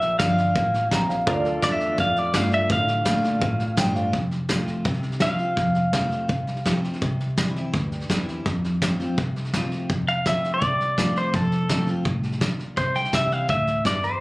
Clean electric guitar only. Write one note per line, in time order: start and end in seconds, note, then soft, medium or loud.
0.00 0.18 E5 medium
0.19 0.87 F5 medium
1.64 1.72 D5 loud
1.72 2.00 E5 loud
2.00 2.19 F5 loud
2.19 2.36 D5 medium
2.36 2.54 F5 loud
2.54 2.72 E5 loud
2.72 3.75 F5 medium
5.22 6.80 F5 medium
10.09 10.27 F5 medium
10.27 10.53 E5 medium
10.54 11.18 D5 medium
11.18 11.35 C5 medium
11.35 11.89 A4 medium
12.78 12.96 C5 medium
12.96 13.13 G5 medium
13.15 13.33 E5 medium
13.33 13.50 F5 medium
13.50 13.83 E5 medium
13.87 14.05 D5 medium
14.04 14.21 C5 medium